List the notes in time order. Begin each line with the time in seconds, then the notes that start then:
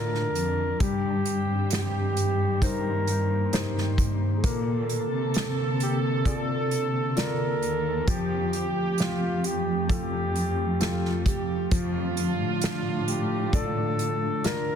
Already playing: A2 D3 F3 D4 F4 A4 A#4 D5 A5
0.14 snare
0.34 F2, closed hi-hat
0.79 G2 D#3 G3 C4 G4, kick, closed hi-hat
1.26 closed hi-hat
1.48 G2
1.70 G4, snare, closed hi-hat
2.17 closed hi-hat
2.61 A#3 D#4 G4 A#4 C5, kick, closed hi-hat
3.07 closed hi-hat
3.53 D#4 G4 C5, snare, closed hi-hat
3.78 snare
3.98 kick, closed hi-hat
4.36 G#4
4.43 A#2 D3 A#3 A4 A5, kick, closed hi-hat
4.89 closed hi-hat
5.12 C3
5.34 snare, closed hi-hat
5.80 G4, closed hi-hat
6.25 F4 A4 D5, kick, closed hi-hat
6.71 closed hi-hat
7.16 F4 A#4 D5, snare, closed hi-hat
7.62 D#2, closed hi-hat
8.06 F2 F3 A3 G4, kick, closed hi-hat
8.53 closed hi-hat
8.76 F2
8.98 F4, snare, closed hi-hat
9.44 G4, closed hi-hat
9.89 F4 G4 A4, kick, closed hi-hat
10.36 closed hi-hat
10.80 F4 G4 A4, snare, closed hi-hat
11.05 snare
11.26 G4, kick, closed hi-hat
11.71 F2 D3 F3 D4 F4 A5, kick, closed hi-hat
12.17 closed hi-hat
12.40 A2
12.61 snare, closed hi-hat
13.08 G4, closed hi-hat
13.53 D4 A4 D5, kick, closed hi-hat
13.99 closed hi-hat
14.44 D4 F4 A#4, snare, closed hi-hat